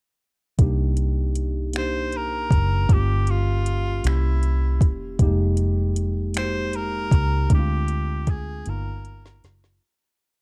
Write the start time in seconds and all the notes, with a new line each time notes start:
0.59 C2 A#3 D4 D#4 G4, kick, closed hi-hat
0.97 closed hi-hat
1.35 closed hi-hat
1.73 A#3 D4 D#4 G4, finger snap, closed hi-hat
1.78 C5
2.12 closed hi-hat
2.17 A#4
2.51 F#1, kick, closed hi-hat
2.89 G1 G#3 C#4 F4 G4, kick, closed hi-hat
2.93 A#3 G4
3.27 F4, closed hi-hat
3.66 closed hi-hat
4.04 C2 A#3 C#4 E4 G4, finger snap, closed hi-hat
4.43 closed hi-hat
4.81 E1, kick, closed hi-hat
5.19 F1 G3 A#3 D#4 G4, kick, closed hi-hat
5.26 G#3
5.57 closed hi-hat
5.96 closed hi-hat
6.34 G#3 A#3 D#4 F#4 C5, finger snap, closed hi-hat
6.44 G4
6.73 A#4, closed hi-hat
7.11 C#2, kick, closed hi-hat
7.50 D2 G#3 C4 D4 E4, kick, closed hi-hat
7.54 G4
7.59 F4
7.88 closed hi-hat
8.27 G#4, kick, closed hi-hat
8.65 G1 A#3 B3 D#4 F4, closed hi-hat
8.69 A#4
9.05 closed hi-hat
9.26 snare
9.44 F#1, snare, closed hi-hat
9.64 snare